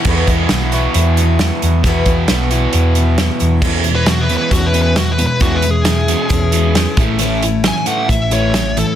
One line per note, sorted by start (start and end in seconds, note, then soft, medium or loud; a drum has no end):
0.05 0.27 E2 medium
0.05 0.23 E2 medium
0.05 0.76 E2 medium
0.05 0.27 B2 medium
0.05 0.72 B2 medium
0.05 0.28 E3 medium
0.05 0.75 E3 medium
0.05 0.28 B3 medium
0.05 0.28 E4 medium
0.05 0.28 F#4 medium
0.05 kick medium
0.05 crash medium
0.09 0.74 B3 medium
0.09 0.74 E4 loud
0.09 0.73 F#4 loud
0.27 0.46 E2 medium
0.27 0.51 E4 medium
0.27 0.51 F#4 medium
0.27 kick medium
0.27 closed hi-hat medium
0.33 0.50 E3 soft
0.49 0.86 B1 medium
0.49 1.21 E3 medium
0.49 1.20 B3 medium
0.49 1.20 E4 medium
0.49 snare loud
0.49 closed hi-hat medium
0.54 1.17 F#4 medium
0.72 1.84 B2 medium
0.72 1.85 E3 medium
0.72 1.86 B3 medium
0.72 1.86 E4 medium
0.72 1.84 F#4 medium
0.72 closed hi-hat medium
0.76 1.83 E2 medium
0.94 1.49 E2 loud
0.94 closed hi-hat medium
1.17 1.40 B3 soft
1.17 1.40 E4 soft
1.17 1.40 F#4 soft
1.17 closed hi-hat medium
1.21 1.39 E3 soft
1.39 1.62 E3 medium
1.39 1.63 B3 medium
1.39 1.62 E4 medium
1.39 1.61 F#4 medium
1.39 snare loud
1.39 closed hi-hat medium
1.62 1.81 E2 medium
1.62 1.85 B3 medium
1.62 1.85 E4 medium
1.62 1.84 F#4 medium
1.62 closed hi-hat medium
1.66 1.85 E3 soft
1.84 2.02 E2 medium
1.84 2.50 E2 loud
1.84 2.08 E2 medium
1.84 2.51 B2 loud
1.84 2.07 B2 medium
1.84 2.51 E3 loud
1.84 2.08 E3 medium
1.84 2.51 B3 loud
1.84 2.07 B3 medium
1.84 2.51 E4 loud
1.84 2.07 E4 medium
1.84 2.05 F#4 loud
1.84 2.50 F#4 loud
1.84 kick loud
1.84 closed hi-hat medium
2.06 2.24 E2 medium
2.06 2.27 E3 soft
2.06 2.29 B3 medium
2.06 2.29 E4 medium
2.06 2.29 F#4 medium
2.06 kick medium
2.06 closed hi-hat medium
2.28 2.66 B1 medium
2.28 2.96 E3 medium
2.28 2.97 B3 medium
2.28 2.96 E4 medium
2.28 2.95 F#4 medium
2.28 snare loud
2.28 closed hi-hat medium
2.51 3.61 B2 medium
2.51 3.62 E3 medium
2.51 3.63 B3 medium
2.51 3.62 E4 medium
2.51 3.62 F#4 medium
2.51 closed hi-hat medium
2.55 3.61 E2 medium
2.73 3.28 E2 loud
2.73 closed hi-hat medium
2.95 3.19 B3 soft
2.95 3.19 E4 medium
2.95 3.18 F#4 medium
2.95 closed hi-hat medium
2.99 3.17 E3 soft
3.18 3.41 E3 medium
3.18 3.40 B3 medium
3.18 3.39 E4 medium
3.18 3.38 F#4 medium
3.18 snare loud
3.18 closed hi-hat medium
3.39 3.59 E2 medium
3.39 3.63 E3 soft
3.39 3.64 B3 medium
3.39 3.63 E4 medium
3.39 3.63 F#4 medium
3.39 closed hi-hat medium
3.62 3.83 E2 medium
3.62 4.35 E2 medium
3.62 3.86 E2 medium
3.62 3.84 B2 loud
3.62 3.86 B2 medium
3.62 3.84 E3 medium
3.62 3.86 E3 medium
3.62 3.86 G#3 medium
3.62 3.87 C#4 medium
3.62 3.87 E4 medium
3.62 kick loud
3.62 crash loud
3.84 4.05 E2 medium
3.84 4.06 B2 medium
3.84 closed hi-hat medium
3.88 4.08 E3 soft
3.88 4.09 G#3 soft
3.88 4.10 C#4 soft
3.88 4.09 E4 medium
3.95 4.09 B4 loud
4.06 4.28 E2 medium
4.06 4.28 B2 medium
4.06 4.31 E3 medium
4.06 4.22 F#4 medium
4.06 snare loud
4.06 closed hi-hat medium
4.11 4.32 G#3 medium
4.11 4.32 C#4 medium
4.11 4.31 E4 medium
4.21 4.36 B4 medium
4.29 4.51 E2 medium
4.29 4.51 B2 medium
4.29 4.52 E3 medium
4.29 4.54 E4 soft
4.29 closed hi-hat medium
4.33 4.53 E3 soft
4.33 4.54 G#3 soft
4.33 4.54 C#4 soft
4.33 4.52 B4 medium
4.51 5.24 E2 medium
4.51 4.72 E2 medium
4.51 4.98 E2 medium
4.51 4.73 B2 medium
4.51 4.98 B2 medium
4.51 4.97 E3 medium
4.51 4.97 G#3 medium
4.51 4.67 F#4 medium
4.51 kick medium
4.51 closed hi-hat medium
4.55 4.99 C#4 medium
4.55 5.00 E4 medium
4.66 4.81 B4 medium
4.73 4.95 E2 medium
4.73 4.96 B2 medium
4.73 4.96 E3 medium
4.73 closed hi-hat medium
4.82 4.97 B4 medium
4.96 5.17 E2 medium
4.96 5.17 B2 medium
4.96 5.20 E3 medium
4.96 5.19 G#3 medium
4.96 5.18 C#4 medium
4.96 5.11 F#4 medium
4.96 snare loud
4.96 closed hi-hat medium
5.00 5.17 E4 medium
5.11 5.25 B4 medium
5.18 5.39 E2 medium
5.18 5.39 B2 medium
5.18 5.39 E3 soft
5.18 5.40 G#3 soft
5.18 5.41 C#4 soft
5.18 5.41 E4 soft
5.18 closed hi-hat medium
5.26 5.41 B4 medium
5.40 5.63 E2 medium
5.40 6.13 E2 medium
5.40 5.62 E2 loud
5.40 5.64 B2 medium
5.40 5.62 B2 medium
5.40 5.64 E3 medium
5.40 5.63 E3 loud
5.40 5.64 G#3 medium
5.40 5.63 C#4 medium
5.40 5.62 E4 medium
5.40 5.57 F#4 medium
5.40 kick loud
5.40 closed hi-hat medium
5.56 5.71 B4 medium
5.62 5.84 E2 medium
5.62 5.84 B2 medium
5.62 5.86 G#3 soft
5.62 5.86 C#4 medium
5.62 5.86 E4 medium
5.62 closed hi-hat medium
5.67 5.84 E3 soft
5.67 7.01 G#4 medium
5.85 6.06 E2 medium
5.85 6.07 B2 medium
5.85 6.08 E3 medium
5.85 6.09 G#3 medium
5.85 6.09 C#4 medium
5.85 6.08 E4 medium
5.85 snare loud
5.85 closed hi-hat loud
6.08 6.30 E2 medium
6.08 6.30 B2 medium
6.08 6.30 E3 loud
6.08 6.30 E3 soft
6.08 6.30 G#3 soft
6.08 6.30 C#4 soft
6.08 6.30 E4 soft
6.08 closed hi-hat medium
6.29 6.75 E2 medium
6.29 6.85 E2 loud
6.29 6.51 E2 medium
6.29 6.76 B2 loud
6.29 6.52 B2 medium
6.29 6.77 E3 medium
6.29 6.76 G#3 medium
6.29 6.78 C#4 loud
6.29 6.79 E4 loud
6.29 kick medium
6.29 closed hi-hat medium
6.52 6.74 E2 medium
6.52 6.74 B2 medium
6.52 6.75 E3 loud
6.52 closed hi-hat medium
6.75 6.96 E2 medium
6.75 6.96 B2 medium
6.75 6.99 E3 medium
6.75 7.00 G#3 medium
6.75 6.98 C#4 medium
6.75 snare loud
6.75 closed hi-hat medium
6.80 6.97 E4 medium
6.97 7.70 A1 medium
6.97 7.19 A2 medium
6.97 7.19 E3 medium
6.97 7.20 A3 loud
6.97 7.21 C#4 medium
6.97 7.21 E4 medium
6.97 kick loud
6.97 closed hi-hat medium
7.01 7.21 A3 soft
7.19 7.41 A2 loud
7.19 7.43 A2 medium
7.19 7.42 E3 medium
7.19 7.44 E3 medium
7.19 7.42 A3 loud
7.19 7.44 A3 medium
7.19 closed hi-hat medium
7.23 7.44 C#4 medium
7.23 7.44 E4 medium
7.43 7.63 A2 medium
7.43 7.63 E3 medium
7.43 7.67 E4 medium
7.43 closed hi-hat medium
7.48 7.67 A3 medium
7.48 7.67 C#4 medium
7.64 7.85 A2 medium
7.64 7.85 E3 medium
7.64 8.11 E3 medium
7.64 7.87 G#5 medium
7.64 snare loud
7.64 closed hi-hat loud
7.68 8.11 A3 medium
7.68 8.12 C#4 medium
7.68 8.12 E4 medium
7.86 8.08 A2 medium
7.86 8.09 E3 loud
7.86 8.09 A3 medium
7.86 8.09 F#5 medium
7.86 closed hi-hat medium
8.09 8.82 A1 loud
8.09 8.30 A2 medium
8.09 8.55 A2 medium
8.09 8.30 E3 medium
8.09 8.54 E3 medium
8.09 8.54 A3 medium
8.09 8.56 C#4 medium
8.09 8.57 E4 loud
8.09 8.32 E5 medium
8.09 kick medium
8.09 closed hi-hat medium
8.31 8.53 A2 medium
8.31 8.53 E3 medium
8.31 8.54 A3 medium
8.31 8.76 C#5 loud
8.31 closed hi-hat medium
8.54 8.75 A2 medium
8.54 8.77 E3 medium
8.54 8.75 E3 medium
8.54 8.78 A3 medium
8.54 8.78 C#4 medium
8.54 8.78 E4 medium
8.54 snare loud
8.54 closed hi-hat medium
8.77 8.95 A2 medium
8.77 8.95 E3 medium
8.77 8.95 C#4 soft
8.77 8.95 E4 soft
8.77 8.95 A4 medium
8.77 closed hi-hat medium
8.82 8.95 A3 soft